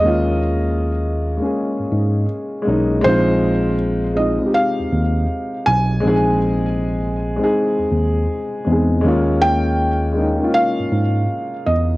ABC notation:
X:1
M:4/4
L:1/16
Q:"Swing 16ths" 1/4=80
K:Bbdor
V:1 name="Felt piano"
e12 z4 | c4 z2 e2 f6 a2- | a2 z12 z2 | z2 g6 f6 e2 |]
V:2 name="Upright piano"
[A,B,DF]6 z [A,B,DA]6 z [A,B,DE]2 | [A,CEF]4- [A,CEF] z [A,CEF] [A,CEG]6- [A,CEG] z2 | [A,CEA]6 z [A,CEA]6 z [A,CEA]2 | [A,B,DF]4- [A,B,DF] z [A,B,DE] [A,B,DF]6- [A,B,DF] z2 |]
V:3 name="Tine electric piano" clef=bass
E,,6- E,, z2 A,, A,,2 z2 _C,,2 | B,,,6- B,,, z2 E,, E,,2 z2 _C,,2 | B,,,6- B,,, z2 E,, E,,2 z2 =E,,2 | E,,6- E,, z2 A,, A,,2 z2 =E,,2 |]